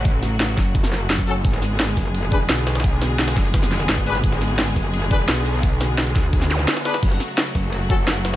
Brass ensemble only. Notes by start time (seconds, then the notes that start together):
1.27 C#4 F#4 A4
2.32 D4 G#4 B4
4.06 D4 G#4 B4
5.11 D4 G#4 B4
6.85 D4 G#4 B4
7.90 C#4 F#4 A4